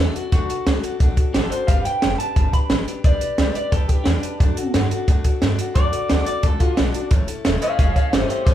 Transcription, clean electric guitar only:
0.00 0.16 A4 medium
0.16 0.31 F#4 medium
0.32 0.99 F#4 medium
1.34 1.51 A4 loud
1.50 1.67 C5 medium
1.67 1.84 F5 medium
1.85 2.18 G5 medium
2.18 2.52 A5 medium
2.54 2.70 B5 medium
3.05 3.54 D5 loud
3.56 3.72 D5 medium
3.72 3.88 A4 medium
3.88 4.05 G4 medium
4.04 4.71 D4 medium
5.75 6.25 D5 loud
6.26 6.43 D5 medium
6.43 6.60 A4 medium
6.60 6.77 F4 medium
6.78 7.11 D4 loud
7.61 7.78 C#5 medium
7.61 7.78 F5 medium
7.79 7.95 C#5 medium
7.79 7.95 F5 medium
7.96 8.12 C#5 medium
7.96 8.13 F5 medium
8.13 8.27 G4 medium
8.13 8.28 C5 loud
8.29 8.44 G4 medium
8.29 8.45 C5 medium
8.45 8.54 G4 medium
8.45 8.54 C5 medium

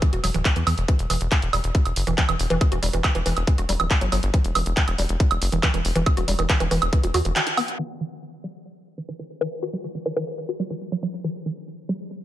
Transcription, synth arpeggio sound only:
0.13 0.16 F#4 medium
0.24 0.27 F#3 medium
0.34 0.37 E3 medium
0.56 0.63 E3 medium
0.67 0.72 E3 medium
0.88 0.96 E3 medium
1.10 1.17 E3 medium
1.53 1.58 G3 medium
2.07 2.12 E3 medium
2.18 2.23 E3 medium
2.29 2.34 E3 medium
2.50 2.55 E3 loud
2.72 2.75 F#4 medium
2.83 2.86 G3 medium
2.93 2.98 E3 medium
3.04 3.09 E3 medium
3.15 3.18 E3 loud
3.26 3.33 E3 loud
3.58 3.61 F#4 medium
3.69 3.72 G3 medium
3.80 3.85 E3 medium
4.01 4.09 F#3 medium
4.12 4.17 F#3 medium
4.34 4.41 E3 medium
4.55 4.63 E3 medium
4.98 5.03 G3 medium
5.52 5.57 E3 medium
5.63 5.68 E3 medium
5.74 5.79 E3 medium
5.96 6.00 E3 loud
6.17 6.20 F#4 medium
6.28 6.31 G3 medium
6.39 6.44 E3 medium
6.50 6.54 E3 medium
6.60 6.63 E3 loud
6.71 6.78 E3 loud
7.04 7.06 F#4 medium
7.14 7.17 F#4 loud
7.25 7.30 E3 medium
7.36 7.43 E3 medium
7.47 7.51 E4 medium
7.57 7.60 B3 loud
7.79 7.86 E3 medium
8.01 8.08 E3 medium
8.44 8.49 G3 medium
8.98 9.03 E3 medium
9.09 9.13 E3 medium
9.19 9.24 E3 medium
9.41 9.46 E3 loud
9.63 9.65 F#4 medium
9.73 9.76 G3 medium
9.84 9.89 E3 medium
9.95 10.00 E3 medium
10.06 10.09 E3 loud
10.16 10.24 E3 loud
10.49 10.52 F#4 medium
10.60 10.63 G3 medium
10.70 10.75 E3 medium
10.92 10.99 F#3 medium
11.03 11.08 F#3 medium
11.24 11.32 E3 medium
11.46 11.53 E3 medium
11.89 11.94 G3 medium

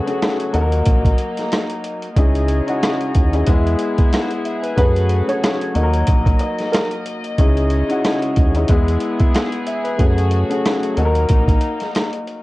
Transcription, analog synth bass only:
0.54 0.83 D#2 loud
0.87 1.15 A#1 medium
2.17 2.62 C#2 loud
3.16 3.44 D#2 medium
3.48 3.76 E2 loud
4.78 5.22 F#2 loud
5.76 6.04 D#2 loud
6.08 6.37 A#1 medium
7.39 7.83 C#2 loud
8.37 8.65 D#2 medium
8.69 8.98 E2 loud
10.00 10.44 F#2 loud
10.98 11.26 D#2 loud
11.30 11.59 A#1 medium

